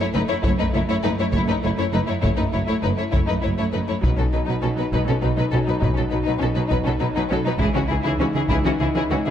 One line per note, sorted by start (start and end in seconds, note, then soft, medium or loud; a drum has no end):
0.00 2.19 A3 soft
0.00 0.06 A3 medium
0.00 2.19 E4 soft
0.00 0.06 E4 medium
0.00 0.06 C#5 medium
0.14 0.21 F#1 soft
0.14 0.20 F#2 soft
0.14 0.21 A3 soft
0.14 0.21 D#4 medium
0.14 0.21 B4 medium
0.28 0.36 F#2 soft
0.28 0.37 A3 medium
0.28 0.34 E4 medium
0.28 0.35 C#5 medium
0.42 0.51 F#1 medium
0.42 0.51 F#2 medium
0.42 0.51 A3 medium
0.42 0.49 E4 medium
0.42 0.51 C#5 medium
0.42 taiko medium
0.58 0.66 F#2 soft
0.58 0.66 A3 medium
0.58 0.64 D#4 soft
0.58 0.66 B4 soft
0.74 0.81 F#1 soft
0.74 0.81 F#2 soft
0.74 0.81 A3 soft
0.74 0.80 E4 soft
0.74 0.81 C#5 soft
0.89 0.95 F#2 medium
0.89 0.95 A3 medium
0.89 0.95 E4 medium
0.89 0.95 C#5 medium
1.04 1.10 F#1 soft
1.04 1.10 F#2 soft
1.04 1.10 A3 soft
1.04 1.10 D#4 soft
1.04 1.10 B4 soft
1.18 1.24 F#2 medium
1.18 1.25 A3 soft
1.18 1.26 E4 soft
1.18 1.25 C#5 medium
1.32 1.39 F#1 medium
1.32 1.39 F#2 medium
1.32 1.40 A3 medium
1.32 1.41 E4 medium
1.32 1.39 C#5 medium
1.32 taiko medium
1.48 1.54 F#2 soft
1.48 1.54 A3 medium
1.48 1.55 D#4 soft
1.48 1.55 B4 soft
1.63 1.70 F#1 soft
1.63 1.69 F#2 soft
1.63 1.70 A3 soft
1.63 1.70 E4 soft
1.63 1.69 C#5 soft
1.78 1.84 F#2 medium
1.78 1.84 A3 medium
1.78 1.84 E4 medium
1.78 1.85 C#5 medium
1.93 2.00 F#1 soft
1.93 1.99 F#2 soft
1.93 1.99 A3 soft
1.93 1.99 D#4 soft
1.93 2.00 B4 soft
2.07 2.14 F#2 soft
2.07 2.14 A3 soft
2.07 2.13 E4 soft
2.07 2.14 C#5 soft
2.21 2.30 F#1 soft
2.21 2.29 F#2 medium
2.21 3.70 A3 soft
2.21 2.29 A3 soft
2.21 2.27 E4 soft
2.21 3.70 E4 soft
2.21 2.29 C#5 medium
2.21 taiko medium
2.36 2.45 F#2 soft
2.36 2.45 A3 soft
2.36 2.42 D#4 soft
2.36 2.44 B4 soft
2.52 2.60 F#1 soft
2.52 2.60 F#2 soft
2.52 2.59 A3 soft
2.52 2.59 E4 soft
2.52 2.59 C#5 soft
2.66 2.74 F#2 medium
2.66 2.74 A3 soft
2.66 2.72 E4 medium
2.66 2.75 C#5 medium
2.82 2.89 F#1 soft
2.82 2.90 F#2 soft
2.82 2.89 A3 soft
2.82 2.88 D#4 soft
2.82 2.90 B4 soft
2.96 3.05 F#2 soft
2.96 3.04 A3 soft
2.96 3.03 E4 soft
2.96 3.04 C#5 soft
3.10 3.20 F#1 medium
3.10 3.20 F#2 soft
3.10 3.19 A3 soft
3.10 3.17 E4 medium
3.10 3.19 C#5 soft
3.10 taiko medium
3.26 3.35 F#2 soft
3.26 3.34 A3 soft
3.26 3.33 D#4 soft
3.26 3.35 B4 soft
3.41 3.50 F#2 soft
3.41 3.50 A3 soft
3.41 3.47 E4 soft
3.41 3.49 C#5 soft
3.45 3.51 F#1 soft
3.57 3.65 F#2 soft
3.57 3.64 A3 medium
3.57 3.64 E4 soft
3.57 3.65 C#5 soft
3.73 3.80 F#1 soft
3.73 3.81 F#2 soft
3.73 3.79 A3 soft
3.73 3.80 D#4 soft
3.73 3.79 B4 soft
3.88 3.95 F#2 soft
3.88 3.94 A3 soft
3.88 3.94 E4 soft
3.88 3.95 C#5 soft
4.02 4.10 B1 soft
4.02 4.10 B2 soft
4.02 4.08 F#3 soft
4.02 7.56 F#3 soft
4.02 4.08 D#4 soft
4.02 7.56 D#4 soft
4.02 4.10 B4 medium
4.02 taiko medium
4.17 4.24 B2 soft
4.17 4.23 F#3 soft
4.17 4.23 C#4 soft
4.17 4.25 A4 soft
4.33 4.40 B1 soft
4.33 4.40 B2 soft
4.33 4.39 F#3 soft
4.33 4.39 D#4 soft
4.33 4.39 B4 soft
4.45 4.54 B2 soft
4.45 4.54 F#3 soft
4.45 4.52 D#4 soft
4.49 4.55 B4 soft
4.61 4.70 B1 soft
4.61 4.70 B2 soft
4.61 4.69 F#3 soft
4.61 4.68 C#4 soft
4.61 4.69 A4 soft
4.77 4.85 B2 soft
4.77 4.83 F#3 soft
4.77 4.83 D#4 soft
4.77 4.85 B4 soft
4.92 5.00 B1 medium
4.92 5.00 B2 medium
4.92 4.99 F#3 medium
4.92 4.99 D#4 medium
4.92 4.99 B4 soft
4.92 taiko medium
5.06 5.14 B2 soft
5.06 5.12 F#3 soft
5.06 5.14 C#4 soft
5.06 5.14 A4 soft
5.21 5.29 B1 soft
5.21 5.30 B2 soft
5.21 5.28 F#3 soft
5.21 5.28 D#4 soft
5.21 5.29 B4 soft
5.36 5.44 B2 soft
5.36 5.43 F#3 soft
5.36 5.42 D#4 soft
5.36 5.44 B4 medium
5.53 5.59 B1 soft
5.53 5.59 B2 soft
5.53 5.59 F#3 soft
5.53 5.59 C#4 soft
5.53 5.58 A4 soft
5.66 5.74 B2 soft
5.66 5.73 F#3 soft
5.66 5.72 D#4 soft
5.66 5.74 B4 soft
5.80 5.89 B1 soft
5.80 5.88 B2 medium
5.80 5.88 F#3 soft
5.80 5.86 D#4 soft
5.80 5.89 B4 medium
5.80 taiko medium
5.93 6.03 F#3 soft
5.93 6.00 C#4 soft
5.98 6.03 B2 soft
5.98 6.04 A4 soft
6.09 6.18 B1 soft
6.09 6.18 B2 soft
6.09 6.18 F#3 soft
6.09 6.16 D#4 soft
6.09 6.18 B4 soft
6.23 6.33 B2 medium
6.23 6.33 F#3 soft
6.23 6.30 D#4 medium
6.23 6.33 B4 medium
6.39 6.48 B1 soft
6.39 6.47 B2 soft
6.39 6.48 F#3 soft
6.39 6.45 C#4 soft
6.39 6.48 A4 soft
6.55 6.62 B2 soft
6.55 6.63 F#3 soft
6.55 6.61 D#4 soft
6.55 6.62 B4 soft
6.68 6.77 B1 medium
6.68 6.77 B2 medium
6.68 6.74 D#4 medium
6.68 6.77 B4 medium
6.68 taiko medium
6.72 6.78 F#3 medium
6.84 6.93 B2 soft
6.84 6.93 F#3 medium
6.84 6.90 C#4 soft
6.84 6.93 A4 soft
7.00 7.06 B1 soft
7.00 7.07 B2 medium
7.00 7.07 F#3 soft
7.00 7.06 D#4 soft
7.00 7.07 B4 soft
7.15 7.22 B2 medium
7.15 7.22 F#3 medium
7.15 7.21 D#4 medium
7.15 7.23 B4 medium
7.29 7.36 B1 soft
7.29 7.36 B2 soft
7.29 7.37 F#3 medium
7.29 7.35 C#4 soft
7.29 7.38 A4 soft
7.44 7.51 B2 soft
7.44 7.52 F#3 soft
7.44 7.50 D#4 medium
7.44 7.53 B4 soft
7.58 7.65 C#2 medium
7.58 7.65 C#3 medium
7.58 7.67 E3 medium
7.58 9.30 E3 medium
7.58 7.65 E4 medium
7.58 7.67 G#4 medium
7.58 taiko medium
7.63 9.30 D#4 medium
7.74 7.80 C#3 medium
7.74 7.82 E3 soft
7.74 7.80 C#4 soft
7.74 7.82 F#4 soft
7.87 7.95 C#2 soft
7.87 7.96 C#3 soft
7.87 7.93 E4 soft
7.87 7.96 G#4 soft
7.91 7.97 E3 soft
8.02 8.10 C#3 medium
8.02 8.12 E3 medium
8.02 8.09 E4 medium
8.02 8.12 G#4 medium
8.19 8.25 C#2 soft
8.19 8.25 C#3 medium
8.19 8.27 E3 soft
8.19 8.26 C#4 soft
8.19 8.27 F#4 soft
8.33 8.40 C#3 medium
8.33 8.43 E3 medium
8.33 8.41 E4 soft
8.33 8.42 G#4 medium
8.49 8.55 C#2 medium
8.49 8.55 C#3 medium
8.49 8.58 E3 medium
8.49 8.55 E4 medium
8.49 8.56 G#4 medium
8.49 taiko medium
8.64 8.70 C#3 soft
8.64 8.72 E3 medium
8.64 8.72 C#4 medium
8.64 8.72 F#4 soft
8.80 8.86 C#2 soft
8.80 8.86 C#3 soft
8.80 8.87 E3 soft
8.80 8.87 E4 soft
8.80 8.86 G#4 soft
8.95 9.01 C#3 medium
8.95 9.02 E3 medium
8.95 9.02 E4 medium
8.95 9.02 G#4 medium
9.10 9.16 C#2 soft
9.10 9.17 C#3 soft
9.10 9.17 E3 soft
9.10 9.17 C#4 soft
9.10 9.17 F#4 soft
9.26 9.30 C#3 soft
9.26 9.30 E3 soft
9.26 9.30 E4 soft
9.26 9.30 G#4 soft